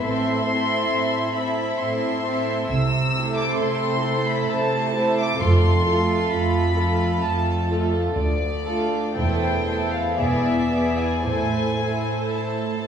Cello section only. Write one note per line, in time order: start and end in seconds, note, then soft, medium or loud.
0.04 0.80 A2 soft
0.91 1.70 A2 soft
1.81 2.60 A2 medium
2.71 3.49 C3 medium
3.60 4.39 C3 medium
4.50 5.31 C3 medium
5.41 6.22 F2 medium
6.33 7.12 F2 medium
7.23 8.05 F2 medium
8.16 9.05 D2 medium
9.17 10.07 E2 medium
10.20 11.13 E2 soft
11.26 12.22 A2 soft
12.35 12.87 A2 soft